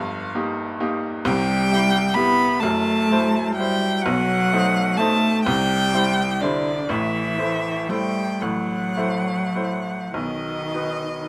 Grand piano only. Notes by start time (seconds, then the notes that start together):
Already playing: G1 G2
0.35 A#3 D#4 G4
0.80 A#3 D#4 G4
1.25 C2 C3
1.72 G3 E4 G4
2.16 G3 E4 G4
2.63 F#1 F#2
3.12 F#3 E4 C5
3.59 F#3 E4 C5
4.06 B1 B2
4.52 A3 D#4 C5
4.99 A3 D#4 C5
5.46 C2 C3
5.93 G3 E4 C5
6.43 G3 E4 C5
6.89 A1 A2
7.38 A3 E4 C5
7.89 A3 E4 C5
8.42 A1 A2
8.97 A3 E4 C5
9.55 A3 E4 C5
10.14 B1 B2
10.74 F#3 D#4 B4